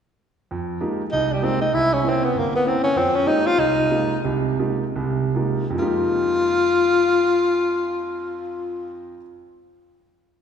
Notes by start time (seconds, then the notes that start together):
0.51 F2
0.81 G#3 A#3 D#4 F4 G4
1.12 C2 D#4
1.33 G3
1.42 G#3 A#3 C4 D#4 F4 G4
1.61 D#4
1.74 C2 E4
1.93 C#4
2.03 A#3 C4 C#4 E4
2.09 C4
2.24 B3
2.35 G1 A#3
2.56 B3
2.64 A#3 C4 C#4 E4
2.84 C#4
2.96 F2 F3 C4
3.16 C#4
3.26 G#3 A#3 D#4 F4 G4
3.46 F4
3.58 C2 D#4
3.90 G#3 A#3 D#4 F4 G4
4.24 C2 C3
4.59 G#3 A#3 D#4 F4 G4
4.96 C2 C3
5.35 G#3 A#3 D#4 F4 G4
5.70 F2 F3
5.75 G#3 A#3 F4
5.80 D#4 G4